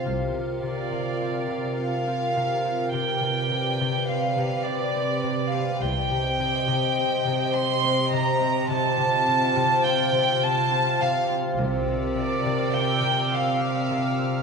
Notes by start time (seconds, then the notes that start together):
Already playing: F4 F5
0.05 C2 C3 A#4
0.34 C3
0.63 C3 D5
0.92 C3
1.22 C4
1.50 C3
1.80 C4 F5
2.07 C4
2.36 C3
2.65 C4
2.93 C3 G4 B4 D5 G5
3.23 C3
3.51 C3
3.81 C3
4.08 C4 F5
4.38 C3
4.65 C4 D5
4.95 C4
5.24 C3
5.52 C4 F5
5.80 C2 C3 C5 D#5 G5
6.11 C3
6.40 C3
6.68 C3
6.98 C4
7.27 C3
7.54 C4 C6
7.84 C4
8.13 C3 A#5
8.41 C4
8.70 C3 F4 F5 A5
9.00 C3
9.28 C3
9.56 C3
9.86 C4 G5
10.15 C3
10.43 C4 A5
10.72 C4
11.01 C3 F5
11.30 C4
11.58 C2 C3 A#4 D5 D6 E6
11.88 C3
12.17 C3 D5
12.46 C3
12.73 C4 G5 F6
13.02 C3
13.32 C4 F5
13.61 C4
13.91 C3
14.19 C4